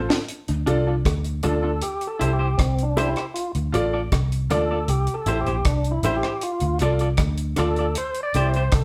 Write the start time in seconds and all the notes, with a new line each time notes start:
0.09 C4 F4 A4, snare
0.29 closed hi-hat
0.48 D2, closed hi-hat
0.66 C2 D4 F4 A4 D5, closed hi-hat, high bongo
0.87 D4 F4 A4
1.05 D2, kick, cross-stick, closed hi-hat, high bongo
1.24 closed hi-hat
1.43 D2 D4 F4 A4 D5, closed hi-hat, low bongo
1.63 D4 F4 A4 D5
1.82 G4, closed hi-hat
2.01 closed hi-hat
2.07 A4
2.19 C2 E4 G4 C5, closed hi-hat, high bongo
2.33 G4
2.39 E4 G4 C5
2.58 C2 C4, kick, cross-stick, closed hi-hat
2.79 closed hi-hat
2.83 D4
2.96 E4 G4 C5, closed hi-hat, high bongo, low bongo
3.09 E4
3.16 E4 G4 C5, cross-stick, closed hi-hat
3.34 F4, closed hi-hat
3.55 D2, closed hi-hat
3.72 A1 F4 A4 D5, closed hi-hat, high bongo
3.93 F4 A4 D5
4.12 C2, kick, cross-stick, closed hi-hat, high bongo
4.32 closed hi-hat
4.50 D2 F4 A4 D5, closed hi-hat, low bongo
4.70 F4 A4 D5
4.88 C2 G4, closed hi-hat
5.07 closed hi-hat
5.14 A4
5.26 A1 E4 G4 C5, closed hi-hat, high bongo
5.41 G4
5.46 A#1 E4 G4 C5, closed hi-hat
5.65 C2 D4, kick, cross-stick, closed hi-hat
5.84 closed hi-hat
5.91 E4
6.03 A1 E4 G4 C5, closed hi-hat, high bongo, low bongo
6.16 G4
6.23 E4 G4 C5, cross-stick
6.41 F4, closed hi-hat
6.60 D2, closed hi-hat
6.79 C2 F4 A4 D5, closed hi-hat, high bongo
6.99 F4 A4 D5, closed hi-hat
7.17 D2, kick, cross-stick, closed hi-hat, high bongo
7.38 closed hi-hat
7.56 D2 F4 A4 D5, cross-stick, closed hi-hat, low bongo
7.76 A4 D5, closed hi-hat
7.80 F4
7.95 C5, closed hi-hat
8.15 closed hi-hat
8.23 D5
8.34 C2 E4 G4 C5, closed hi-hat, high bongo
8.48 C5
8.54 E4 G4 C5, closed hi-hat
8.72 C2 A4, kick, cross-stick, closed hi-hat